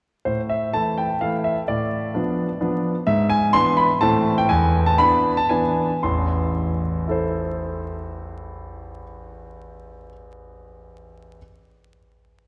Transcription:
0.25 0.72 A2 soft
0.25 0.40 C5 medium
0.50 0.74 E5 medium
0.74 1.08 E3 soft
0.74 1.08 A3 soft
0.74 1.09 E4 soft
0.74 0.98 A5 medium
0.98 1.19 G5 medium
1.21 1.55 E3 soft
1.21 1.56 A3 soft
1.21 1.56 E4 soft
1.21 1.35 F5 medium
1.44 1.58 E5 medium
1.68 2.13 A2 soft
1.68 2.83 D5 medium
2.14 2.47 F3 soft
2.14 2.48 B3 soft
2.14 2.48 D4 soft
2.61 2.94 F3 soft
2.61 2.94 B3 soft
2.61 2.95 D4 soft
3.07 3.53 G#2 medium
3.07 3.28 E5 medium
3.29 3.54 G#5 medium
3.53 3.88 E3 medium
3.53 3.88 B3 medium
3.53 3.88 D4 medium
3.53 3.75 C6 loud
3.77 3.91 B5 medium
4.01 4.48 A2 medium
4.01 4.45 E3 soft
4.01 4.45 A3 soft
4.01 4.46 C4 soft
4.01 4.33 A5 medium
4.38 4.50 G5 medium
4.49 4.97 E2 medium
4.49 4.71 G#5 medium
4.86 4.99 A5 medium
4.98 5.36 E3 medium
4.98 5.36 B3 medium
4.98 5.36 D4 medium
4.98 5.37 B5 medium
5.37 5.50 A5 medium
5.49 5.88 E3 soft
5.49 5.89 B3 soft
5.49 5.89 D4 soft
5.49 6.03 G#5 medium
6.03 9.03 A1 soft
6.03 9.03 E2 soft
6.03 9.03 C6 medium
7.07 10.07 E4 soft
7.07 10.09 A4 soft
7.07 10.11 C5 soft

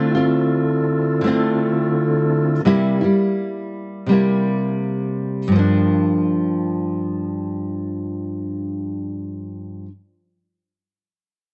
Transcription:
0.00 0.15 D3 medium
0.00 2.61 D3 medium
0.00 0.16 A3 medium
0.00 0.15 C4 medium
0.00 2.61 C4 medium
0.00 2.62 E4 medium
0.00 0.13 F4 medium
0.00 2.62 F4 medium
0.00 2.63 A4 medium
0.15 1.23 A3 soft
0.15 1.24 C4 medium
0.15 1.22 F4 medium
1.21 2.65 D3 medium
1.21 2.66 A3 medium
1.26 2.66 C4 medium
1.26 2.67 F4 medium
2.65 3.01 C3 medium
2.65 3.01 G3 medium
2.65 3.02 A#3 medium
2.65 3.00 E4 medium
3.01 4.08 G3 soft
3.01 4.09 A#3 soft
3.01 4.08 E4 medium
4.06 5.50 C3 medium
4.06 5.51 G3 medium
4.11 5.55 A#3 medium
4.11 5.54 E4 medium
5.48 9.85 G2 medium
5.52 9.88 F3 medium
5.52 9.89 A#3 medium
5.59 9.91 D4 medium

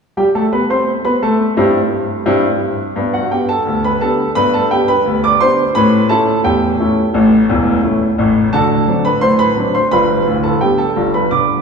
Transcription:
0.17 0.27 G3 medium
0.17 0.27 G4 medium
0.17 0.27 G5 medium
0.35 0.44 A3 medium
0.35 0.44 A4 medium
0.35 0.44 A5 medium
0.53 0.62 B3 medium
0.53 0.62 B4 medium
0.53 0.62 B5 medium
0.70 0.89 C4 medium
0.70 0.89 C5 medium
0.70 0.89 C6 medium
1.05 1.14 B3 medium
1.05 1.14 B4 medium
1.05 1.14 B5 medium
1.22 1.42 A3 medium
1.22 1.41 A4 medium
1.22 1.41 A5 medium
1.57 1.76 G2 medium
1.57 1.76 C4 medium
1.57 1.76 E4 medium
1.57 1.76 G4 medium
2.26 2.45 G2 medium
2.26 2.45 C4 medium
2.26 2.45 E4 medium
2.26 2.45 G4 medium
2.96 3.26 G2 medium
2.96 3.17 B3 soft
3.14 3.31 F#4 soft
3.14 3.31 F#5 medium
3.31 3.51 B3 soft
3.31 3.51 D4 soft
3.31 3.48 G4 soft
3.31 3.49 G5 medium
3.49 3.82 A4 medium
3.49 3.82 A5 medium
3.67 3.96 D2 medium
3.84 4.01 B4 medium
3.84 4.02 B5 medium
4.01 4.21 B3 soft
4.01 4.21 D4 soft
4.01 4.21 G4 soft
4.01 4.34 A4 medium
4.01 4.29 A5 medium
4.35 4.66 G2 medium
4.35 4.57 B3 soft
4.35 4.53 B4 medium
4.35 4.53 B5 loud
4.54 4.71 A4 medium
4.54 4.71 A5 medium
4.71 4.91 B3 soft
4.71 4.91 D4 soft
4.71 4.88 G4 medium
4.71 4.88 G5 medium
4.88 5.21 B4 medium
4.88 5.21 B5 medium
5.06 5.35 D2 medium
5.24 5.40 D5 medium
5.24 5.41 D6 medium
5.40 5.60 B3 soft
5.40 5.61 D4 soft
5.40 5.60 G4 soft
5.40 5.74 C5 medium
5.40 5.74 C6 medium
5.75 6.05 A2 medium
5.75 5.96 C#4 medium
5.75 6.08 B4 medium
5.75 6.03 B5 medium
6.09 6.29 A3 soft
6.09 6.29 C#4 soft
6.09 6.30 E4 medium
6.09 6.43 A4 medium
6.09 6.37 A5 medium
6.44 6.74 E2 medium
6.44 8.14 G4 medium
6.44 7.83 G5 medium
6.80 6.99 A3 soft
6.80 6.99 C#4 medium
6.80 6.99 E4 medium
7.14 7.42 A1 medium
7.14 7.42 A2 medium
7.49 7.77 E1 medium
7.49 7.77 E2 medium
7.83 8.02 A3 soft
7.83 8.02 C#4 soft
7.83 8.02 E4 soft
8.18 8.46 A1 medium
8.18 8.46 A2 medium
8.53 8.83 D3 medium
8.53 8.74 F#4 medium
8.53 9.02 A4 medium
8.53 9.02 A5 medium
8.87 9.06 F#3 soft
8.87 9.07 C4 soft
8.87 9.07 D4 medium
9.05 9.21 B4 medium
9.05 9.22 B5 medium
9.21 9.52 A2 medium
9.21 9.38 C5 medium
9.21 9.39 C6 medium
9.39 9.72 B4 medium
9.39 9.72 B5 medium
9.57 9.76 F#3 soft
9.57 9.76 C4 soft
9.57 9.77 D4 soft
9.74 9.91 C5 medium
9.74 9.92 C6 medium
9.91 10.20 G1 medium
9.91 10.20 G2 medium
9.91 10.41 B4 medium
9.91 10.41 B5 medium
10.26 10.54 D1 medium
10.26 10.54 D2 medium
10.43 10.60 A4 medium
10.43 10.61 A5 medium
10.61 10.80 G3 soft
10.61 10.80 B3 soft
10.61 10.80 D4 soft
10.61 10.78 G4 medium
10.61 10.78 G5 medium
10.78 11.11 A4 medium
10.78 11.12 A5 medium
10.96 11.24 G1 medium
10.96 11.24 G2 medium
11.14 11.31 B4 medium
11.14 11.31 B5 medium
11.31 11.61 D3 medium
11.31 11.62 D5 medium
11.31 11.62 D6 medium

